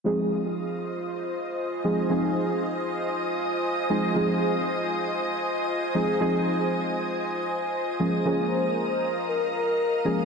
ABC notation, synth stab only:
X:1
M:4/4
L:1/8
Q:"Swing 16ths" 1/4=117
K:Fm
V:1 name="Synth stab"
[F,A,CEA]6- [F,A,CEA] [F,A,CEA] | [F,A,CEA]6- [F,A,CEA] [F,A,CEA] | [F,A,CEA]6- [F,A,CEA] [F,A,CEA] | [F,A,CEA]6- [F,A,CEA] [F,A,B,DA] |
[F,A,B,DA]6- [F,A,B,DA] [F,A,B,DA] |]